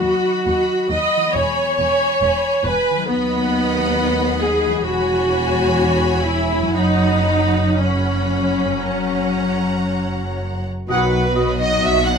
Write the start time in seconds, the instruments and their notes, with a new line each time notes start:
Already playing: harp D#3 F#3 D#4 F#4 B4, french horn section F#4, viola section F#4
0.01 cello section D#2, double bass section D#2, violin section D#5 F#5
0.05 violin section B5
0.46 cello section D#2, double bass section D#2, violin section D#5 F#5 B5
0.90 cello section D#2, double bass section D#2, viola section D#5, french horn section D#5, violin section D#5 F#5 B5
1.16 harp E3
1.21 harp G#3
1.25 harp B3
1.30 cello section E2, harp B4
1.34 double bass section E1, viola section C#5, french horn section C#5, violin section G#5 B5
1.79 double bass section E1, cello section E2, violin section G#5 B5
2.21 double bass section E1, cello section E2, violin section G#5 B5
2.64 double bass section E1, cello section E2, viola section B4, french horn section B4, violin section G#5 B5
2.90 harp D#3
2.95 harp F#3
2.99 harp B3
3.04 cello section D#2, harp B4, violin section B5
3.08 double bass section D#2, french horn section B3, viola section B3, violin section D#5 F#5
4.40 viola section G#4, french horn section G#4
4.66 harp E3
4.71 harp G#3
4.75 harp C#4
4.80 cello section E2, french horn section F#4, harp B4, violin section B5
4.84 double bass section E1, viola section F#4, violin section C#5 G#5
6.23 viola section E4, french horn section E4
6.57 harp F#2
6.61 harp F#3
6.66 harp C#4
6.71 cello section F#2, viola section D#4, harp B4, violin section F#5
6.75 double bass section F#1, french horn section D#4, violin section C#5 B5
7.79 viola section C#4, french horn section C#4, violin section C#5 F#5 B5
8.64 harp F#2
8.69 harp F#3
8.73 harp C#4
8.78 harp A#4
8.82 violin section C#5 F#5 A#5
10.88 double bass section B1, harp B2, cello section B2, trombone section D#3 F#3, french horn section B3 F#4, clarinet F#4, flute section B4, violin section B4, oboe D#5, trumpet section F#5
11.12 harp F#3
11.35 viola section F#3 B3, violin section F#4 D#5, clarinet F#4, harp F#4, oboe D#5
11.59 harp D#4, flute section D#5, violin section D#5
11.82 double bass section B1, cello section B2, clarinet F#4, oboe D#5, harp D#5, flute section E5, violin section E5
12.04 harp F#4, flute section F#5, violin section F#5